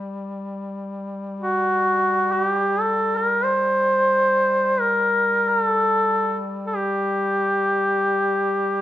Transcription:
Already playing: G3
1.40 F#4
2.32 F#4
2.44 G4
2.80 A4
3.17 A#4
3.44 C5
4.80 A#4
5.48 A#4
5.60 A4
6.66 A4
6.75 G4

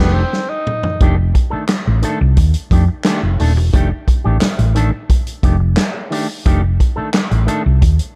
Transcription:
Already playing: B3 D4 G4
0.00 F1 D#3 A3
0.14 C4
0.33 snare
0.49 D#4
0.67 mid tom
0.83 floor tom
1.01 F1 D#3 A3 D4 G4, kick, closed hi-hat
1.16 muted clean electric guitar stroke
1.34 muted clean electric guitar stroke, kick, closed hi-hat
1.50 D#3 A3 D4 A4, muted fingered electric bass stroke
1.68 snare, clap, closed hi-hat
1.85 A1, muted clean electric guitar stroke
2.02 D#3 A3 D4 A4, closed hi-hat
2.21 C2, muted clean electric guitar stroke
2.37 D#2, muted clean electric guitar stroke, kick, closed hi-hat
2.54 closed hi-hat
2.71 F2 D#3 A3 D4 G4, kick, closed hi-hat
2.88 muted clean electric guitar stroke
3.05 D#3 A3 D4 G4, snare, clap, closed hi-hat
3.23 F1
3.39 D#1 D#3 A3 D4 A4, open hi-hat
3.56 E1, muted clean electric guitar stroke
3.73 F1 D#3 A3 D4 G4, kick, closed hi-hat
3.91 muted clean electric guitar stroke
4.07 muted clean electric guitar stroke, kick, closed hi-hat
4.24 A1 D#3 A3 D4 G4
4.41 snare, clap, closed hi-hat
4.58 A1, muted clean electric guitar stroke, closed hi-hat
4.75 D#3 A3 D4 A4, closed hi-hat
4.92 muted clean electric guitar stroke
5.09 muted clean electric guitar stroke, kick, closed hi-hat
5.27 closed hi-hat
5.43 F1 D#3 A3 D4 G4, kick, closed hi-hat
5.60 muted clean electric guitar stroke
5.77 snare, clap, closed hi-hat
5.94 muted clean electric guitar stroke
6.10 D#3 A3 D4 G4, open hi-hat
6.29 muted clean electric guitar stroke
6.46 F1 D#3 A3 D4 G4, kick, closed hi-hat
6.63 muted clean electric guitar stroke
6.80 muted clean electric guitar stroke, kick, closed hi-hat
6.96 D#3 A3 D4 A4, muted fingered electric bass stroke
7.14 snare, clap, closed hi-hat
7.31 A1, muted clean electric guitar stroke, closed hi-hat
7.47 D#3 A3 D4 A4, closed hi-hat
7.63 C2, muted clean electric guitar stroke
7.81 D#2, muted clean electric guitar stroke, kick, closed hi-hat
7.99 closed hi-hat

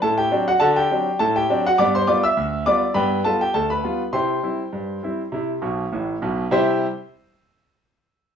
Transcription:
0.02 A2 A4 A5
0.18 G4 G5
0.31 F#3 C4 D4
0.48 F#4 F#5
0.60 D3 F#4 A4 A5
0.76 G4 G5
0.91 F#3 C4 D4
1.19 A2 A4 A5
1.36 G4 G5
1.49 F#3 C4 D4
1.66 F#4 F#5
1.78 G2 B3 D5 D6
1.95 C5 C6
2.07 G3 B3 F4 D5 D6
2.23 E5 E6
2.37 D2
2.66 G3 B3 F4 D5 D6
2.94 G2 B3 B4 G5 B5
3.25 G3 B3 F4 A4 A5
3.41 G4 G5
3.54 D2 A4 A5
3.70 B4 B5
3.84 G3 B3 F4
4.13 C3 E4 C5 G5 C6
4.43 G3 C4 E4
4.73 G2
5.03 G3 C4 E4
5.32 C3 E4
5.62 B1 B2
5.92 A1 A2
6.22 B1 B2
6.51 C3 G3 E4 G4 C5 E5

